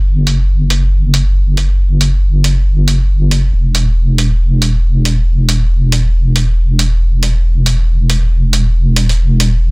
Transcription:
Already playing: wobble bass F#1
0.27 closed hi-hat
0.70 closed hi-hat
1.14 closed hi-hat
1.57 closed hi-hat
2.01 closed hi-hat
2.44 closed hi-hat
2.88 closed hi-hat
3.31 closed hi-hat
3.53 wobble bass E1
3.75 closed hi-hat
4.18 closed hi-hat
4.62 closed hi-hat
5.05 closed hi-hat
5.49 closed hi-hat
5.92 closed hi-hat
6.36 closed hi-hat
6.79 closed hi-hat
7.23 closed hi-hat
7.66 closed hi-hat
8.10 closed hi-hat
8.53 closed hi-hat
8.96 closed hi-hat
9.09 closed hi-hat
9.40 closed hi-hat

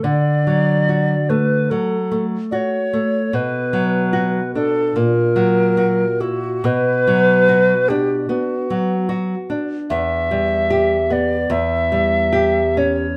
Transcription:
0.03 nylon-string guitar D3, recorder D5
0.47 nylon-string guitar F#3
0.89 nylon-string guitar F#4
1.29 nylon-string guitar A3, recorder B4
1.70 nylon-string guitar F#3, recorder A4
2.12 nylon-string guitar A3
2.51 nylon-string guitar F#4, recorder C#5 D5
2.93 nylon-string guitar A3
3.33 nylon-string guitar B2, recorder B4
3.73 nylon-string guitar F#3
4.13 nylon-string guitar F#4
4.55 nylon-string guitar D4, recorder A4
4.96 nylon-string guitar A#2, recorder A#4
5.36 nylon-string guitar F#3
5.77 nylon-string guitar F#4
6.20 nylon-string guitar E4, recorder F#4
6.64 nylon-string guitar B2, recorder B4
7.07 nylon-string guitar F#3
7.49 nylon-string guitar F#4
7.88 nylon-string guitar D4, recorder G4
8.28 nylon-string guitar B3, recorder F#4
8.70 nylon-string guitar F#3
9.09 nylon-string guitar F#4
9.50 nylon-string guitar D4
9.90 nylon-string guitar E2, recorder E5
10.31 nylon-string guitar G3
10.70 nylon-string guitar G4
11.10 nylon-string guitar B3, recorder D5
11.50 nylon-string guitar E2, recorder E5
11.92 nylon-string guitar G3
12.33 nylon-string guitar G4
12.77 nylon-string guitar C#4, recorder C#5

